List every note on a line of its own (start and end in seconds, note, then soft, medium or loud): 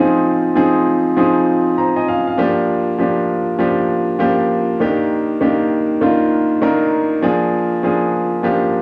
0.00 0.55 F3 medium
0.00 0.56 C4 medium
0.00 0.56 D#4 medium
0.00 0.57 G#4 loud
0.00 2.40 A#4 medium
0.55 0.97 F3 medium
0.55 0.97 C4 medium
0.55 0.97 D#4 medium
0.55 0.98 G#4 loud
1.17 1.58 F3 medium
1.17 1.58 C4 medium
1.17 1.58 D#4 medium
1.17 1.58 G#4 medium
1.78 1.96 C5 medium
1.78 1.96 A#5 medium
1.96 2.07 D#5 medium
1.96 2.07 G#5 medium
2.08 2.26 F5 medium
2.08 2.26 G#5 medium
2.27 2.56 F5 medium
2.38 2.79 F3 medium
2.38 2.79 A#3 medium
2.38 2.79 D4 medium
2.38 2.80 G4 loud
2.99 3.40 F3 medium
2.99 3.40 A#3 medium
2.99 3.40 D4 medium
2.99 3.40 G4 medium
3.59 4.00 F3 medium
3.59 4.00 A#3 medium
3.59 4.00 D4 medium
3.59 4.01 G4 medium
4.19 4.61 F3 medium
4.19 4.61 A#3 medium
4.19 4.61 D4 medium
4.19 4.61 G4 loud
4.80 5.21 D#3 medium
4.80 5.22 A#3 medium
4.80 5.22 D4 medium
4.80 5.22 G4 loud
5.41 5.82 D#3 medium
5.41 5.82 A#3 medium
5.41 5.82 D4 medium
5.41 5.83 G4 medium
6.01 6.43 D#3 medium
6.01 6.43 A#3 medium
6.01 6.43 D4 medium
6.01 6.43 F4 medium
6.61 7.03 D#3 medium
6.61 7.03 A#3 medium
6.61 7.03 D4 medium
6.61 7.04 A#4 loud
7.22 7.64 F3 medium
7.22 7.64 A#3 medium
7.22 7.64 D4 medium
7.22 7.64 G#4 loud
7.83 8.24 F3 medium
7.83 8.25 A#3 medium
7.83 8.25 D4 medium
7.83 8.25 G#4 medium
8.43 8.82 F3 medium
8.43 8.82 A#3 medium
8.43 8.82 D4 medium
8.43 8.82 G4 medium